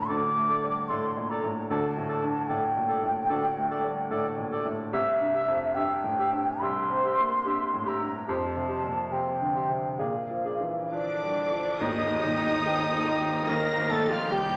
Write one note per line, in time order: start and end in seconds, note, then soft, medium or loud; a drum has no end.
0.00 0.10 D2 medium
0.00 1.72 G2 soft
0.00 0.91 A2 soft
0.00 1.17 A#2 soft
0.00 1.68 D3 medium
0.00 0.49 A3 soft
0.00 1.12 F4 soft
0.00 0.88 D5 soft
0.08 1.66 D2 medium
0.08 3.28 D4 soft
0.08 0.24 A4 medium
0.08 0.26 D5 medium
0.08 0.90 D6 medium
0.37 0.79 A3 soft
0.49 2.08 A3 soft
0.49 0.65 A4 medium
0.49 0.66 D5 medium
0.64 0.90 G3 soft
0.88 1.33 A2 soft
0.88 1.06 A4 medium
0.88 1.05 D5 soft
0.88 2.47 D5 soft
0.88 1.31 C6 medium
1.17 1.43 A#2 soft
1.29 1.47 A4 soft
1.29 1.46 D5 medium
1.29 1.68 A#5 medium
1.44 1.70 A2 soft
1.69 3.27 D2 medium
1.69 4.96 D3 medium
1.69 1.86 A4 medium
1.69 1.87 D5 medium
1.69 2.50 A5 medium
1.97 2.39 A2 soft
2.09 3.69 A3 soft
2.09 2.25 A4 medium
2.09 2.26 D5 medium
2.23 2.49 G2 soft
2.48 2.92 A2 soft
2.48 2.64 A4 soft
2.48 4.09 D5 medium
2.48 2.65 D5 medium
2.48 4.51 G5 medium
2.76 3.03 A#2 soft
2.88 4.50 G4 medium
2.88 3.04 A4 medium
2.88 3.06 D5 medium
3.03 3.46 A2 soft
3.30 4.89 D2 medium
3.30 4.96 D4 medium
3.30 3.46 A4 medium
3.30 3.46 D5 medium
3.57 4.00 A3 soft
3.70 4.96 A3 soft
3.70 3.87 A4 soft
3.70 3.87 D5 medium
3.84 4.11 G3 soft
4.11 4.54 A2 soft
4.11 4.27 A4 medium
4.11 4.96 D5 medium
4.11 4.27 D5 medium
4.38 4.66 A#2 soft
4.51 6.17 G4 soft
4.51 4.68 A4 medium
4.51 4.69 D5 medium
4.65 4.93 A2 soft
4.92 6.58 C2 medium
4.92 8.32 C3 medium
4.92 5.09 G4 medium
4.92 5.76 E5 medium
4.92 5.09 E5 medium
5.20 5.64 G2 soft
5.34 7.03 C4 medium
5.34 5.50 G4 medium
5.34 5.51 E5 soft
5.48 5.75 F2 soft
5.75 6.21 G2 soft
5.75 5.92 G4 soft
5.75 5.91 E5 medium
5.75 7.44 E5 medium
5.75 6.62 G5 medium
6.04 6.33 A2 soft
6.18 7.85 G4 soft
6.18 6.35 G4 soft
6.18 6.34 E5 medium
6.32 6.79 G2 soft
6.61 8.24 C2 medium
6.61 10.03 G3 soft
6.61 6.77 G4 medium
6.61 6.78 E5 medium
6.61 7.89 C6 loud
6.90 7.35 C4 soft
7.04 8.68 C4 soft
7.04 7.20 G4 soft
7.04 7.20 E5 soft
7.18 7.46 A#3 soft
7.45 7.90 G2 soft
7.45 7.61 G4 medium
7.45 8.31 E5 medium
7.45 7.62 E5 soft
7.74 8.01 A2 soft
7.86 8.02 G4 medium
7.86 9.54 G4 soft
7.86 8.03 E5 soft
7.86 8.27 A#5 medium
8.00 8.28 G2 soft
8.28 10.03 F2 medium
8.28 9.95 F2 medium
8.28 8.44 G4 medium
8.28 8.45 C5 medium
8.28 9.14 A5 medium
8.56 9.01 C3 soft
8.69 10.03 C4 soft
8.69 8.85 G4 soft
8.69 8.87 C5 soft
8.84 9.12 A#2 soft
9.12 9.58 C3 soft
9.12 9.28 G4 soft
9.12 9.29 C5 soft
9.12 10.90 F5 soft
9.12 10.00 G5 medium
9.41 9.70 D3 soft
9.55 10.03 G4 soft
9.55 9.71 G4 soft
9.55 9.72 C5 soft
9.69 9.99 C3 soft
9.98 11.84 A#2 soft
9.98 11.77 A#2 medium
9.98 10.14 G#4 soft
9.98 10.16 D5 soft
9.98 10.92 F5 medium
10.29 10.80 F3 soft
10.44 11.84 D4 soft
10.44 10.61 G#4 soft
10.44 10.62 D5 soft
10.61 10.92 E3 soft
10.91 11.77 D3 medium
10.91 11.40 F3 soft
10.91 11.81 D4 medium
10.91 11.77 D4 medium
10.91 11.82 D4 medium
10.91 11.82 D5 medium
10.91 11.83 F5 soft
10.91 11.77 D6 medium
11.23 11.52 G3 soft
11.36 11.84 G#4 soft
11.52 11.81 F3 soft
11.79 14.27 D#2 medium
11.79 13.45 D#2 medium
11.79 13.48 D#3 medium
11.79 13.49 D#3 medium
11.79 12.20 A#3 medium
11.79 13.48 D#4 medium
11.79 13.50 D#4 medium
11.79 12.61 G4 medium
11.79 13.45 A#4 medium
11.79 13.19 D#5 medium
11.79 13.49 D#6 loud
11.79 tam-tam medium
12.09 13.76 D#4 soft
12.23 12.91 A#2 soft
12.23 12.64 G3 medium
12.64 14.57 C4 medium
12.64 13.49 F4 medium
12.64 13.20 G4 soft
12.64 13.33 G4 medium
12.64 13.07 A4 medium
13.07 13.47 G4 medium
13.07 13.74 D#5 soft
13.21 14.30 G4 medium
13.48 14.29 D#2 medium
13.48 14.57 D#3 medium
13.48 13.90 A#3 medium
13.48 14.30 D#4 medium
13.48 14.57 G4 medium
13.48 13.90 A#4 medium
13.48 13.92 A#4 medium
13.48 13.92 A#5 medium
13.48 13.90 A#6 medium
13.77 14.57 D#4 soft
13.89 14.31 A#2 soft
13.89 14.11 A3 medium
13.89 14.11 A4 medium
13.89 14.12 A4 medium
13.89 14.13 A5 medium
13.89 14.10 A6 medium
14.04 14.57 A#3 soft
14.10 14.31 F3 medium
14.10 14.33 F4 medium
14.10 14.31 F4 medium
14.10 14.33 F4 medium
14.10 14.33 F5 medium
14.10 14.31 F6 medium
14.30 14.57 C2 medium
14.30 14.57 G3 medium
14.30 14.57 D#4 medium
14.30 14.57 G4 medium
14.30 14.57 G5 medium
14.30 14.57 G6 medium